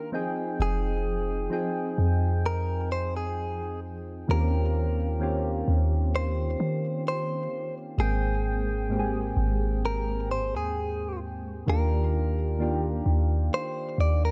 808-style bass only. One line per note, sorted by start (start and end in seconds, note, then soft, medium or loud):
0.60 1.48 F1 loud
1.98 4.25 F2 loud
4.29 5.63 D#2 loud
5.68 6.56 D#2 loud
6.60 7.48 D#3 loud
7.98 9.33 G#1 loud
9.37 10.56 G#1 loud
10.54 11.63 D#2 loud
11.68 13.02 D#2 loud
13.06 13.50 D#2 loud
13.98 14.31 D#2 loud